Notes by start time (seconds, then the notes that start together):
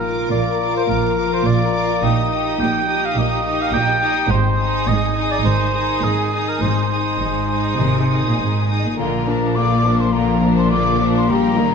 Already playing: A#1 A#2 F4 A#4
0.03 F4 A#4 D6
0.12 A#4
0.31 A#1 A#2 D5 F5
0.52 A#5
0.60 F4 A#4 D6
0.71 F5
0.77 C5
0.89 A#1 A#2 F3 A#4
1.09 F4
1.17 F4 A#4 D6
1.28 A#4
1.34 C5
1.46 A#1 A#2 D5 F5
1.65 A#5
1.74 F4 A#4 D6
1.84 F5
2.02 A#1 A#2 D#4 G4 D#5 D#6
2.22 D#4
2.30 D#4 G4 D#6
2.41 G4
2.59 A#1 A#2 D#5 G5
2.78 G5
2.88 D#4 G4 D#6
2.97 D#5
3.05 F5
3.16 A#1 A#2 A#3 D#5
3.35 D#4
3.45 D#4 G4 D#6
3.54 G4
3.62 F5
3.73 A#1 A#2 D#5 G5
3.92 G5
4.01 D#4 G4 D#6
4.11 D#5
4.30 G#1 G#2 C5
4.48 D#4
4.58 D#4 G#4 D#6
4.67 G#4
4.86 G#1 G#2 D#5
5.05 G#5
5.15 D#4 G#4 D#6
5.25 D#5
5.31 D5
5.44 G#1 G#2 D#3 C5
5.63 D#4
5.72 D#4 G#4 D#6
5.82 G#4
6.02 G#1 G#2 G#4 D#5
6.22 G#5
6.31 D#4 G#4 D#6
6.41 D#5
6.49 A#4
6.61 G#1 G#2 C5
6.80 D#4
6.92 D#4 G#4 D#6
7.00 G#4
7.20 G#1 G#2 D#5
7.39 G#5
7.51 D#4 G#4 D#6
7.59 D#5
7.79 G#1 C3 D#3
8.00 D#4
8.10 D#4 G#4 D#6
8.20 G#4
8.26 A#2
8.39 G#1 G#2 D#5
8.59 G#5
8.70 D#4 G#4 D#6
8.79 D#5
8.85 A#2
8.98 A#1 A#2 D3 A#3 F4 A#4 A#5
9.26 F3 A#3 D4 A#4
9.55 D3 A#3 F4 D5 D6
9.84 F3 A#3 D4 A#4
9.99 C5 C6
10.13 D3 F3 A#3 F4 A#4 A#5
10.41 F3 A#3 D4 A#4
10.56 C5 C6
10.70 D3 A#3 F4 D5 D6
10.99 F3 A#3 D4 A#4
11.14 C5 C6
11.28 A#2 G3 A#3 G4 A#4 A#5
11.57 D#3 G3 A#3 D#4 A#4